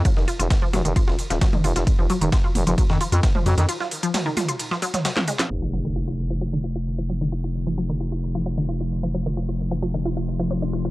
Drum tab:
RD |x-x-x-x-x-x-xxx-|x-x-x-x-x-x-x-x-|x-x-x-x-x-x-xxx-|----------------|
HH |x-oxx-oxx-oxx-ox|x-oxx-oxx-oxx-ox|x-oxx-oxx-oxx-ox|----------------|
SD |-o--o-o--o-oo--o|----o----o--o--o|-o--o-o--o-ooo-o|----------------|
T2 |------o------o--|------o------o--|----o-o----o-o--|----------------|
BD |o---o---o---o---|o---o---o---o---|----------------|----------------|

RD |----------------|----------------|
HH |----------------|----------------|
SD |----------------|----------------|
T2 |----------------|----------------|
BD |----------------|----------------|